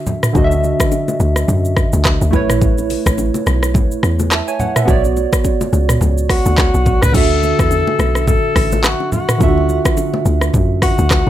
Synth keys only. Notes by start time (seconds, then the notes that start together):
Already playing: D3 D4 F#4 E5
0.33 D3 D4 F#4
0.38 D#5
0.44 E5
2.31 A3 E4 B4
2.36 C#5
4.31 E5 A5
4.48 C#5 G#5
4.60 C#5 F#5
4.76 B4 E5
4.85 B3 F#4 C#5
4.90 D5
7.12 D3 D4 F#4
7.17 E5
9.38 D3 D4 F4
9.43 E5
9.48 F#4